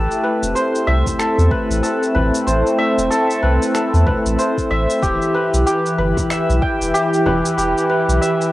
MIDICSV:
0, 0, Header, 1, 6, 480
1, 0, Start_track
1, 0, Key_signature, 0, "minor"
1, 0, Tempo, 638298
1, 1858, Time_signature, 4, 2, 24, 8
1, 6409, End_track
2, 0, Start_track
2, 0, Title_t, "Santur"
2, 0, Program_c, 0, 15
2, 0, Note_on_c, 0, 67, 78
2, 0, Note_on_c, 0, 69, 69
2, 0, Note_on_c, 0, 71, 73
2, 0, Note_on_c, 0, 76, 82
2, 0, Note_on_c, 0, 79, 103
2, 173, Note_off_c, 0, 71, 0
2, 176, Note_on_c, 0, 71, 66
2, 225, Note_off_c, 0, 76, 0
2, 293, Note_off_c, 0, 79, 0
2, 414, Note_on_c, 0, 72, 78
2, 459, Note_off_c, 0, 71, 0
2, 655, Note_on_c, 0, 76, 94
2, 892, Note_off_c, 0, 69, 0
2, 895, Note_on_c, 0, 69, 90
2, 1136, Note_on_c, 0, 71, 73
2, 1181, Note_off_c, 0, 72, 0
2, 1371, Note_off_c, 0, 69, 0
2, 1375, Note_on_c, 0, 69, 74
2, 1610, Note_off_c, 0, 71, 0
2, 1613, Note_on_c, 0, 71, 70
2, 1817, Note_off_c, 0, 67, 0
2, 1855, Note_on_c, 0, 72, 71
2, 1900, Note_off_c, 0, 71, 0
2, 2091, Note_off_c, 0, 76, 0
2, 2094, Note_on_c, 0, 76, 98
2, 2332, Note_off_c, 0, 69, 0
2, 2335, Note_on_c, 0, 69, 95
2, 2575, Note_on_c, 0, 71, 71
2, 2621, Note_off_c, 0, 72, 0
2, 2813, Note_off_c, 0, 69, 0
2, 2816, Note_on_c, 0, 69, 79
2, 3053, Note_off_c, 0, 71, 0
2, 3056, Note_on_c, 0, 71, 74
2, 3297, Note_on_c, 0, 72, 75
2, 3343, Note_off_c, 0, 71, 0
2, 3535, Note_off_c, 0, 76, 0
2, 3538, Note_on_c, 0, 76, 96
2, 3777, Note_on_c, 0, 67, 89
2, 4017, Note_on_c, 0, 71, 75
2, 4062, Note_off_c, 0, 72, 0
2, 4255, Note_off_c, 0, 67, 0
2, 4258, Note_on_c, 0, 67, 80
2, 4495, Note_off_c, 0, 71, 0
2, 4498, Note_on_c, 0, 71, 79
2, 4736, Note_off_c, 0, 76, 0
2, 4739, Note_on_c, 0, 76, 78
2, 4978, Note_on_c, 0, 79, 97
2, 5018, Note_off_c, 0, 69, 0
2, 5216, Note_off_c, 0, 67, 0
2, 5219, Note_on_c, 0, 67, 99
2, 5455, Note_off_c, 0, 71, 0
2, 5458, Note_on_c, 0, 71, 76
2, 5694, Note_off_c, 0, 67, 0
2, 5697, Note_on_c, 0, 67, 75
2, 5934, Note_off_c, 0, 71, 0
2, 5937, Note_on_c, 0, 71, 70
2, 6175, Note_off_c, 0, 76, 0
2, 6178, Note_on_c, 0, 76, 81
2, 6409, Note_off_c, 0, 67, 0
2, 6409, Note_off_c, 0, 71, 0
2, 6409, Note_off_c, 0, 76, 0
2, 6409, Note_off_c, 0, 79, 0
2, 6409, End_track
3, 0, Start_track
3, 0, Title_t, "Analog synth pad"
3, 0, Program_c, 1, 89
3, 0, Note_on_c, 1, 57, 84
3, 0, Note_on_c, 1, 64, 70
3, 0, Note_on_c, 1, 67, 88
3, 239, Note_on_c, 1, 60, 82
3, 650, Note_off_c, 1, 67, 0
3, 3777, Note_off_c, 1, 60, 0
3, 3779, Note_off_c, 1, 57, 0
3, 3780, Note_on_c, 1, 52, 90
3, 3889, Note_on_c, 1, 67, 74
3, 6409, Note_off_c, 1, 52, 0
3, 6409, Note_off_c, 1, 64, 0
3, 6409, Note_off_c, 1, 67, 0
3, 6409, End_track
4, 0, Start_track
4, 0, Title_t, "Sub bass"
4, 0, Program_c, 2, 38
4, 321, Note_on_c, 2, 28, 92
4, 402, Note_off_c, 2, 28, 0
4, 658, Note_on_c, 2, 36, 78
4, 776, Note_off_c, 2, 36, 0
4, 1040, Note_on_c, 2, 40, 104
4, 1121, Note_off_c, 2, 40, 0
4, 1280, Note_on_c, 2, 33, 98
4, 1361, Note_off_c, 2, 33, 0
4, 1618, Note_on_c, 2, 33, 96
4, 1736, Note_off_c, 2, 33, 0
4, 1858, Note_on_c, 2, 33, 98
4, 1976, Note_off_c, 2, 33, 0
4, 2240, Note_on_c, 2, 28, 91
4, 2321, Note_off_c, 2, 28, 0
4, 2579, Note_on_c, 2, 36, 78
4, 2697, Note_off_c, 2, 36, 0
4, 2961, Note_on_c, 2, 40, 99
4, 3042, Note_off_c, 2, 40, 0
4, 3201, Note_on_c, 2, 33, 91
4, 3282, Note_off_c, 2, 33, 0
4, 3539, Note_on_c, 2, 33, 98
4, 3657, Note_off_c, 2, 33, 0
4, 3780, Note_on_c, 2, 28, 98
4, 3897, Note_off_c, 2, 28, 0
4, 4163, Note_on_c, 2, 35, 96
4, 4243, Note_off_c, 2, 35, 0
4, 4500, Note_on_c, 2, 31, 78
4, 4617, Note_off_c, 2, 31, 0
4, 4883, Note_on_c, 2, 35, 112
4, 4963, Note_off_c, 2, 35, 0
4, 5122, Note_on_c, 2, 28, 94
4, 5202, Note_off_c, 2, 28, 0
4, 5460, Note_on_c, 2, 28, 99
4, 5577, Note_off_c, 2, 28, 0
4, 5700, Note_on_c, 2, 28, 100
4, 5817, Note_off_c, 2, 28, 0
4, 6080, Note_on_c, 2, 35, 93
4, 6162, Note_off_c, 2, 35, 0
4, 6409, End_track
5, 0, Start_track
5, 0, Title_t, "Frame drum"
5, 807, Note_on_c, 9, 64, 64
5, 882, Note_off_c, 9, 64, 0
5, 1623, Note_on_c, 9, 64, 77
5, 1698, Note_off_c, 9, 64, 0
5, 3064, Note_on_c, 9, 64, 91
5, 3139, Note_off_c, 9, 64, 0
5, 4639, Note_on_c, 9, 64, 79
5, 4715, Note_off_c, 9, 64, 0
5, 5462, Note_on_c, 9, 64, 99
5, 5537, Note_off_c, 9, 64, 0
5, 6409, End_track
6, 0, Start_track
6, 0, Title_t, "Drums"
6, 83, Note_on_c, 9, 82, 31
6, 158, Note_off_c, 9, 82, 0
6, 324, Note_on_c, 9, 82, 64
6, 399, Note_off_c, 9, 82, 0
6, 422, Note_on_c, 9, 82, 49
6, 497, Note_off_c, 9, 82, 0
6, 565, Note_on_c, 9, 82, 32
6, 640, Note_off_c, 9, 82, 0
6, 800, Note_on_c, 9, 36, 59
6, 804, Note_on_c, 9, 82, 65
6, 875, Note_off_c, 9, 36, 0
6, 879, Note_off_c, 9, 82, 0
6, 899, Note_on_c, 9, 26, 71
6, 902, Note_on_c, 9, 82, 53
6, 974, Note_off_c, 9, 26, 0
6, 977, Note_off_c, 9, 82, 0
6, 1045, Note_on_c, 9, 82, 30
6, 1120, Note_off_c, 9, 82, 0
6, 1138, Note_on_c, 9, 36, 100
6, 1213, Note_off_c, 9, 36, 0
6, 1286, Note_on_c, 9, 82, 58
6, 1361, Note_off_c, 9, 82, 0
6, 1381, Note_on_c, 9, 82, 49
6, 1456, Note_off_c, 9, 82, 0
6, 1525, Note_on_c, 9, 82, 30
6, 1600, Note_off_c, 9, 82, 0
6, 1765, Note_on_c, 9, 82, 66
6, 1840, Note_off_c, 9, 82, 0
6, 1862, Note_on_c, 9, 82, 51
6, 1938, Note_off_c, 9, 82, 0
6, 2005, Note_on_c, 9, 82, 32
6, 2080, Note_off_c, 9, 82, 0
6, 2246, Note_on_c, 9, 82, 67
6, 2321, Note_off_c, 9, 82, 0
6, 2343, Note_on_c, 9, 82, 52
6, 2418, Note_off_c, 9, 82, 0
6, 2484, Note_on_c, 9, 82, 33
6, 2560, Note_off_c, 9, 82, 0
6, 2725, Note_on_c, 9, 82, 66
6, 2800, Note_off_c, 9, 82, 0
6, 2818, Note_on_c, 9, 26, 73
6, 2822, Note_on_c, 9, 82, 53
6, 2893, Note_off_c, 9, 26, 0
6, 2897, Note_off_c, 9, 82, 0
6, 2964, Note_on_c, 9, 82, 31
6, 3040, Note_off_c, 9, 82, 0
6, 3059, Note_on_c, 9, 36, 96
6, 3134, Note_off_c, 9, 36, 0
6, 3204, Note_on_c, 9, 82, 66
6, 3279, Note_off_c, 9, 82, 0
6, 3302, Note_on_c, 9, 82, 51
6, 3377, Note_off_c, 9, 82, 0
6, 3441, Note_on_c, 9, 36, 57
6, 3444, Note_on_c, 9, 82, 33
6, 3517, Note_off_c, 9, 36, 0
6, 3520, Note_off_c, 9, 82, 0
6, 3685, Note_on_c, 9, 82, 67
6, 3760, Note_off_c, 9, 82, 0
6, 3779, Note_on_c, 9, 36, 114
6, 3782, Note_on_c, 9, 82, 54
6, 3855, Note_off_c, 9, 36, 0
6, 3858, Note_off_c, 9, 82, 0
6, 3923, Note_on_c, 9, 82, 33
6, 3998, Note_off_c, 9, 82, 0
6, 4165, Note_on_c, 9, 82, 68
6, 4240, Note_off_c, 9, 82, 0
6, 4263, Note_on_c, 9, 82, 53
6, 4339, Note_off_c, 9, 82, 0
6, 4405, Note_on_c, 9, 82, 35
6, 4481, Note_off_c, 9, 82, 0
6, 4642, Note_on_c, 9, 36, 64
6, 4646, Note_on_c, 9, 82, 63
6, 4717, Note_off_c, 9, 36, 0
6, 4721, Note_off_c, 9, 82, 0
6, 4740, Note_on_c, 9, 26, 78
6, 4743, Note_on_c, 9, 82, 53
6, 4815, Note_off_c, 9, 26, 0
6, 4819, Note_off_c, 9, 82, 0
6, 4886, Note_on_c, 9, 82, 33
6, 4962, Note_off_c, 9, 82, 0
6, 4980, Note_on_c, 9, 36, 101
6, 5055, Note_off_c, 9, 36, 0
6, 5126, Note_on_c, 9, 82, 64
6, 5201, Note_off_c, 9, 82, 0
6, 5225, Note_on_c, 9, 82, 55
6, 5300, Note_off_c, 9, 82, 0
6, 5365, Note_on_c, 9, 82, 35
6, 5440, Note_off_c, 9, 82, 0
6, 5606, Note_on_c, 9, 82, 66
6, 5682, Note_off_c, 9, 82, 0
6, 5705, Note_on_c, 9, 82, 53
6, 5780, Note_off_c, 9, 82, 0
6, 5848, Note_on_c, 9, 82, 34
6, 5923, Note_off_c, 9, 82, 0
6, 6087, Note_on_c, 9, 82, 61
6, 6162, Note_off_c, 9, 82, 0
6, 6185, Note_on_c, 9, 82, 53
6, 6260, Note_off_c, 9, 82, 0
6, 6325, Note_on_c, 9, 82, 34
6, 6400, Note_off_c, 9, 82, 0
6, 6409, End_track
0, 0, End_of_file